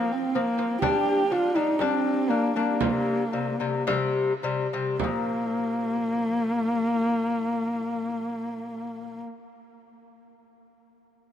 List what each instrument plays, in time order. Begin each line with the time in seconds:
Already playing: lute F3 C4, horsehead fiddle A#3
0.12 horsehead fiddle C4
0.35 lute F3 C4, horsehead fiddle A#3, frame drum
0.58 lute F3 C4
0.82 lute G3 D4, horsehead fiddle G4, frame drum
1.31 lute G3 D4, horsehead fiddle F4
1.55 lute G3 D4, horsehead fiddle D#4
1.79 lute G3 D4, horsehead fiddle C4, frame drum
2.29 lute G3 D4, horsehead fiddle A#3
2.56 lute G3 D4, horsehead fiddle A#3
2.81 lute C3 G3, frame drum
3.33 lute C3 G3, frame drum
3.60 lute C3 G3
3.87 lute C3 G3, frame drum
4.42 lute C3 G3, frame drum
4.73 lute C3 G3
4.99 lute A#2, horsehead fiddle A#3, frame drum
5.04 lute F3